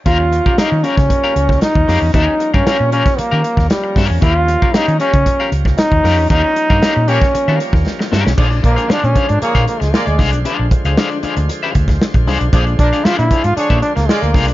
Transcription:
<<
  \new Staff \with { instrumentName = "Clean electric guitar" } { \time 4/4 \key ees \major \tempo 4 = 116 <des' g' bes' f''>16 r8 <des' g' bes' f''>16 <des' g' bes' f''>16 r16 <des' g' bes' f''>16 r8 <des' g' bes' f''>16 r4 <des' g' bes' f''>16 r16 | <des' g' bes' f''>8 r16 <des' g' bes' f''>16 <des' g' bes' f''>16 r16 <des' g' bes' f''>16 r8 <des' g' bes' f''>16 r4 <des' g' bes' f''>8 | <des' g' bes' f''>16 r8 <des' g' bes' f''>16 <des' g' bes' f''>16 r16 <des' g' bes' f''>16 r8 <des' g' bes' f''>16 r4 <des' g' bes' f''>16 r16 | <des' g' bes' f''>16 r8 <des' g' bes' f''>16 <des' g' bes' f''>16 r16 <des' g' bes' f''>16 r8 <des' g' bes' f''>8 r8. <des' g' bes' f''>8 |
<d' aes' c'' f''>16 r8 <d' aes' c'' f''>16 <d' aes' c'' f''>16 r16 <d' aes' c'' f''>16 r8 <d' aes' c'' f''>16 r4 <d' aes' c'' f''>16 r16 | <d' aes' c'' f''>8 r16 <d' aes' c'' f''>16 <d' aes' c'' f''>16 r16 <d' aes' c'' f''>16 r8 <d' aes' c'' f''>8 r8. <d' aes' c'' f''>16 r16 | <d' aes' c'' f''>16 r8 <d' aes' c'' f''>16 <d' aes' c'' f''>8 <d' aes' c'' f''>16 r8 <d' aes' c'' f''>8 r8. <d' aes' c'' f''>16 r16 | }
  \new Staff \with { instrumentName = "Horn section" } { \time 4/4 \key ees \major r1 | r1 | r1 | r4. <bes g' des''>8 r2 |
<f d' aes'>16 r16 <f d' bes'>16 r4 r16 <aes' des''>8 r8 <aes f' d''>8 r8 | r1 | <f d' aes'>16 r16 <f d' bes'>16 r4 r16 <aes' des''>8 r8 <aes f' d''>8 r8 | }
  \new Staff \with { instrumentName = "Trombone" } { \time 4/4 \key ees \major f'4 ees'8 des'4. ees'4 | ees'8. des'8. des'8 bes4 g8. r16 | f'4 ees'8 des'4 r8 ees'4 | ees'4. des'4 r4. |
r8 bes8 d'16 des'8 d'16 bes8 bes16 aes16 bes16 aes8 r16 | r1 | r8 d'8 f'16 e'8 f'16 d'8 d'16 bes16 aes16 bes8 r16 | }
  \new Staff \with { instrumentName = "Tonewheel organ" } { \clef bass \time 4/4 \key ees \major <f g bes des'>1~ | <f g bes des'>1~ | <f g bes des'>1~ | <f g bes des'>1 |
<d f aes c''>1~ | <d f aes c''>1~ | <d f aes c''>1 | }
  \new Staff \with { instrumentName = "Fingered electric bass" } { \clef bass \time 4/4 \key ees \major ees,8. r8 ees16 r16 des16 r8 des,8 r16 ees,16 f,16 e,16 | ees,16 r8 g,16 r16 bes,8 r8 ees16 r16 ees,16 r8 g,16 e,16 | ees,8. r8 ees16 r16 des16 r8 des,8 r16 ees,16 f,16 e,16 | ees,16 r8 g,16 r16 bes,8 r8 ees16 r16 ees,16 r8 g,16 ces,16 |
bes,,8 bes,,16 r8 bes,16 r16 aes,16 r16 bes,16 r16 des,16 r16 d,16 c,16 ces,16 | r16 bes,,16 r16 des,16 r8. d,16 r8 d,8 r16 bes,,16 c,16 ces,16 | bes,,8 bes,,16 r8 bes,16 r16 aes,16 r16 bes,16 r16 des,16 r16 d,16 c,16 ces,16 | }
  \new DrumStaff \with { instrumentName = "Drums" } \drummode { \time 4/4 <hh bd>8 hh16 bd16 <hh sn>8 hh16 <hh bd sn>16 <hh bd>8 hh16 <bd sn>16 <hh sn>16 bd16 <hho sn>8 | <hh bd>8 hh16 bd16 <hh sn>8 hh16 <hh bd sn>16 hh8 hh16 <bd sn>16 <hh sn>8 <hho bd sn>8 | <hh bd>8 hh16 bd16 <hh sn>16 hh16 hh16 <hh bd>16 <hh bd>8 hh16 <bd sn>16 <hh sn>16 bd16 <hho sn>8 | <hh bd>8 hh16 bd16 <hh sn>8 hh16 <bd sn>16 hh8 hh16 <bd sn>16 sn16 sn16 sn16 sn16 |
<cymc bd>16 hh16 <hh bd>16 hh16 sn16 hh16 <hh bd>16 hh16 hh16 <hh bd>16 hh16 <hh sn>16 sn16 hh16 <hho bd sn>16 hh16 | hh8 <hh bd>16 hh16 sn16 hh16 hh16 hh16 hh8 <hh bd>16 <hh bd sn>16 sn16 <hh bd>16 <hho sn>16 hh16 | <hh bd>16 hh16 <hh bd>16 hh16 sn16 hh16 <hh bd>16 hh16 hh16 bd16 hh16 <hh sn>16 sn16 hh16 <hho bd sn>16 hh16 | }
>>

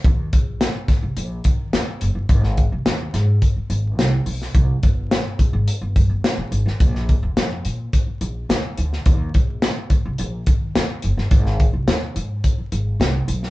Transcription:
<<
  \new Staff \with { instrumentName = "Upright bass" } { \clef bass \time 4/4 \key ees \major \tempo 4 = 106 ees,8 bes,,8. r16 d,16 c,16 bes,,8 ees8 ees,16 r16 ges,,16 g,,16 | aes,,8. c,16 ees,8 aes,8 r8 aes,,8 c,8 ces,8 | c,8 g,,8. r16 bes,,16 aes,,16 r16 g,,16 g,16 g,,16 r16 bes,,16 aes,,16 a,,16 | bes,,8. d,16 f,8 bes,8 r8 bes,,8 d,8 d,8 |
ees,8 bes,,8. r16 d,16 c,16 bes,,8 ees8 ees,16 r16 ges,,16 g,,16 | aes,,8. c,16 ees,8 aes,8 r8 aes,,8 c,8 ces,8 | }
  \new DrumStaff \with { instrumentName = "Drums" } \drummode { \time 4/4 <hh bd>8 <hh bd>8 <hh sn>8 <hh bd sn>8 hh8 <hh bd>8 <hh sn>8 hh8 | <hh bd>16 sn16 <hh bd>8 <hh sn>8 <hh sn>8 <hh bd>8 hh8 <hh sn>8 hho16 sn16 | <hh bd>8 <hh bd>8 <hh sn>8 <hh bd>8 hh8 <hh bd>8 <hh sn>8 hh16 sn16 | <hh bd>16 sn16 <hh bd>8 <hh sn>8 hh8 <hh bd>8 hh8 <hh sn>8 hh16 sn16 |
<hh bd>8 <hh bd>8 <hh sn>8 <hh bd>8 hh8 <hh bd>8 <hh sn>8 hh16 sn16 | <hh bd>16 sn16 <hh bd>8 <hh sn>8 hh8 <hh bd>8 hh8 <hh sn>8 hh16 sn16 | }
>>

